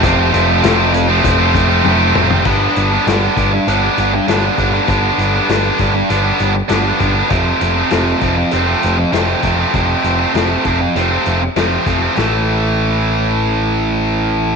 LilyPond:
<<
  \new Staff \with { instrumentName = "Distorted electric guitar" } { \time 4/4 \key g \mixolydian \tempo 4 = 99 <f, c f a c'>8 <c f a c'>8 <f, c f a c'>16 <f a c'>8 <f a c'>8 <f a c'>8 <f a c'>16 <f, c f a c'>16 <f a c'>16 <c f a c'>16 <f a c'>16 | <g, d g b d'>8. <g b d'>16 <g, d g b d'>8 <d g b d'>8 <d g b d'>16 <g b d'>8. <g, d g b d'>8 <d g b d'>16 <g b d'>16 | <g, d g b d'>8. <g b d'>16 <g, d g b d'>8 <d g b d'>8 <d g b d'>16 <g b d'>8. <g, d g b d'>8 <d g b d'>16 <g b d'>16 | <f, c f a c'>8. <f a c'>16 <f, c f a c'>8 <c f a c'>8 <c f a c'>16 <f a c'>8. <f, c f a c'>8 <c f a c'>16 <f a c'>16 |
<f, c f a c'>8. <f a c'>16 <f, c f a c'>8 <c f a c'>8 <c f a c'>16 <f a c'>8. <f, c f a c'>8 <c f a c'>16 <f a c'>16 | <a, e a>1 | }
  \new Staff \with { instrumentName = "Picked electric bass" } { \clef bass \time 4/4 \key g \mixolydian f,,8 f,,8 f,,4 f,,4 f,,8 f,,8 | g,,8 g,,8 g,,8 g,,8 g,,8 g,,8 g,,8 g,,8 | g,,8 g,,8 g,,8 g,,8 g,,8 g,,8 g,,8 g,,8 | f,,8 f,,8 f,,8 f,,8 f,,8 f,,8 f,,8 f,,8 |
f,,8 f,,8 f,,8 f,,8 f,,8 f,,8 f,,8 f,,8 | a,,1 | }
  \new DrumStaff \with { instrumentName = "Drums" } \drummode { \time 4/4 <hh bd>8 hh8 <hh sn>8 hh8 <hh bd>8 <hh bd>8 tommh8 toml16 tomfh16 | <cymc bd>8 hh8 <hh sn>8 <hh bd>8 hh8 hh8 <hh sn>8 <hh bd>8 | <hh bd>8 hh8 <hh sn>8 <hh bd>8 hh8 hh8 <hh sn>8 <hh bd>8 | <hh bd>8 hh8 <hh sn>8 <hh bd>8 hh8 hh8 <hh sn>8 <hh bd>8 |
<hh bd>8 hh8 <hh sn>8 <hh bd>8 hh8 hh8 <hh sn>8 <hh bd>8 | sn4 r4 r4 r4 | }
>>